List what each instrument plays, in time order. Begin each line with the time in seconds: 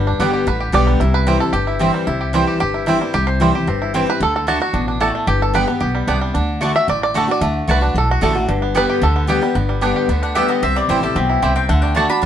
Already playing: upright bass G1, steel-string acoustic guitar G2, five-string banjo G3
0.07 five-string banjo D4
0.19 upright bass G1, steel-string acoustic guitar D3 G3 B3 G4, five-string banjo G3, mandolin B3 G4 D5 G5
0.33 five-string banjo G4
0.47 upright bass A1, steel-string acoustic guitar D3, five-string banjo B4
0.60 five-string banjo G4
0.72 upright bass B1, steel-string acoustic guitar D3 G3 B3 G4, mandolin B3 G4 D5 G5, five-string banjo D5
0.87 five-string banjo G3
1.00 upright bass C2, steel-string acoustic guitar C3, five-string banjo E4
1.14 five-string banjo B4
1.27 steel-string acoustic guitar E3 G3 C4 E4, five-string banjo G3, mandolin C4 E4 C5 G5
1.40 steel-string acoustic guitar C4 E4, five-string banjo A4
1.53 upright bass G1, steel-string acoustic guitar G2, five-string banjo G4
1.67 five-string banjo E4
1.79 steel-string acoustic guitar E3 G3 C4 E4, mandolin C4 E4 C5 G5, five-string banjo C4
1.94 five-string banjo G3
2.07 upright bass C2, steel-string acoustic guitar C3, five-string banjo E4
2.21 five-string banjo G4
2.33 steel-string acoustic guitar E3 G3 C4 E4, five-string banjo G3, mandolin C4 E4 C5 G5
2.47 five-string banjo G4
2.60 upright bass G1, steel-string acoustic guitar G2, five-string banjo G4
2.74 five-string banjo E4
2.86 steel-string acoustic guitar E3 G3 C4 E4, mandolin C4 E4 C5 G5, five-string banjo E4
3.01 five-string banjo G3, steel-string acoustic guitar C4 E4
3.14 upright bass C2, steel-string acoustic guitar C3, five-string banjo G4
3.27 five-string banjo C5
3.40 steel-string acoustic guitar E3 G3 C4 E4, five-string banjo G3, mandolin C4 E4 C5 G5
3.54 steel-string acoustic guitar C4 E4, five-string banjo G4
3.67 upright bass G1, steel-string acoustic guitar G2, five-string banjo C4
3.82 five-string banjo E4
3.94 steel-string acoustic guitar E3 G3 C4 E4, five-string banjo C4, mandolin C4 E4 C5 G5
4.07 steel-string acoustic guitar C4 E4, five-string banjo B4
4.20 upright bass D2, steel-string acoustic guitar D3, five-string banjo A4
4.36 five-string banjo A4
4.47 steel-string acoustic guitar D3 A3 D4 F#4, mandolin A3 F#4 D5 A5, five-string banjo F#4
4.60 steel-string acoustic guitar D4 F#4, five-string banjo F#4
4.73 upright bass A1, steel-string acoustic guitar B2, five-string banjo D4
4.88 five-string banjo D4
5.00 steel-string acoustic guitar A2, mandolin A3 F#4 D5 A5, five-string banjo A4
5.15 five-string banjo A3
5.27 upright bass G1, steel-string acoustic guitar G2, five-string banjo G4
5.42 five-string banjo A4
5.53 steel-string acoustic guitar D3 G3 B3 G4, mandolin B3 G4 D5 G5, five-string banjo B4
5.67 five-string banjo B3, steel-string acoustic guitar B3 G4
5.80 upright bass B1, steel-string acoustic guitar B2, five-string banjo G4
5.95 five-string banjo G3
6.07 upright bass C2, steel-string acoustic guitar C3, mandolin B3 G4 D5 G5, five-string banjo D4
6.21 five-string banjo G3
6.34 upright bass D2, steel-string acoustic guitar D3, five-string banjo D4
6.61 steel-string acoustic guitar D3 A3 D4 F#4, mandolin A3 F#4 D5 A5, five-string banjo A3
6.75 steel-string acoustic guitar D4 F#4, five-string banjo E5
6.88 upright bass A1, steel-string acoustic guitar A2, five-string banjo D5
7.03 five-string banjo D5
7.14 steel-string acoustic guitar D3 A3 D4 F#4, mandolin A3 F#4 D5 A5, five-string banjo A4
7.28 steel-string acoustic guitar D4 F#4, five-string banjo D5
7.41 upright bass D2, steel-string acoustic guitar D3, five-string banjo A3
7.68 upright bass C2, steel-string acoustic guitar D3 A3 D4 F#4, mandolin A3 F#4 D5 A5, five-string banjo B4
7.81 five-string banjo D4, steel-string acoustic guitar D4 F#4
7.94 upright bass B1, steel-string acoustic guitar A2, five-string banjo A4
8.11 five-string banjo F#4
8.21 upright bass A1, steel-string acoustic guitar D3 A3 D4 F#4, mandolin A3 F#4 D5 A5, five-string banjo A4
8.35 five-string banjo A3, steel-string acoustic guitar D4 F#4
8.49 upright bass G1, steel-string acoustic guitar G2, five-string banjo D3
8.62 five-string banjo B3
8.75 steel-string acoustic guitar D3 G3 B3 G4, mandolin B3 G4 D5 G5, five-string banjo B4
8.89 five-string banjo G4
9.02 upright bass D2, steel-string acoustic guitar D3, five-string banjo A4
9.16 five-string banjo B3
9.27 steel-string acoustic guitar D3 G3 B3 G4, mandolin B3 G4 D5 G5, five-string banjo G4
9.42 five-string banjo G3, steel-string acoustic guitar B3 G4
9.55 upright bass G1, steel-string acoustic guitar G2, five-string banjo B3
9.69 five-string banjo G3
9.81 steel-string acoustic guitar D3 G3 B3 G4, mandolin B3 G4 D5 G5, five-string banjo D4
9.96 five-string banjo G4
10.08 upright bass D2, steel-string acoustic guitar D3, five-string banjo B3
10.23 five-string banjo D4, mandolin F#5
10.35 steel-string acoustic guitar D3 G3 B3 G4, mandolin B3 G4 D5 E5 G5, five-string banjo G4
10.49 five-string banjo B3, mandolin D#5
10.62 upright bass C2, steel-string acoustic guitar C3, five-string banjo C4, mandolin E5
10.76 five-string banjo G3, mandolin D5
10.89 upright bass A1, steel-string acoustic guitar E3 G3 C4 E4, mandolin C4 E4 C5 G5, five-string banjo E4
11.03 steel-string acoustic guitar C4 E4, five-string banjo G4, mandolin A4
11.15 upright bass B1, steel-string acoustic guitar B2, five-string banjo C4, mandolin G4
11.30 five-string banjo E4
11.42 upright bass C2, steel-string acoustic guitar C3, mandolin C4 E4 C5 G5, five-string banjo G4
11.56 five-string banjo C4, mandolin G5
11.69 upright bass D2, steel-string acoustic guitar D3, five-string banjo A3, mandolin F#5
11.82 five-string banjo D4, mandolin G5
11.95 steel-string acoustic guitar D3 A3 D4 F#4, mandolin A3 F#4 D5 A5, five-string banjo D4
12.10 five-string banjo D4, steel-string acoustic guitar D4 F#4, mandolin B5
12.22 upright bass A1, mandolin A5